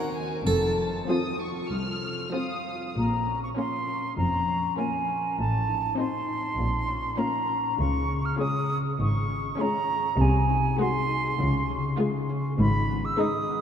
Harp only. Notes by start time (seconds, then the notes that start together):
Already playing: D#3 D#4 F#4 D#5
0.03 C4
0.24 D#4
0.46 F3
0.66 F4
0.87 C5
1.08 F4
1.29 C4
1.50 F4
1.70 C4
1.91 F4
2.12 C5
2.33 F4
2.54 C4
2.75 F4
2.95 A#2
3.26 C#4
3.56 A#4
3.87 C#4
4.17 F3
4.48 C#4
4.78 A#4
5.08 C#4
5.38 A2
5.68 D#4
5.98 C5
6.28 D#4
6.58 A#2
6.88 C#4
7.18 A#4
7.48 C#4
7.78 C#3
8.08 C#4
8.38 G#4
8.70 C#4
8.99 G#3
9.29 C#4
9.59 G#4
9.89 C#4
10.20 C3
10.50 D#4
10.80 G#4
11.09 D#4
11.40 C#3
11.70 C#4
12.00 G#4
12.29 C#4
12.59 G#2
12.89 B3
13.19 G#4
13.49 B3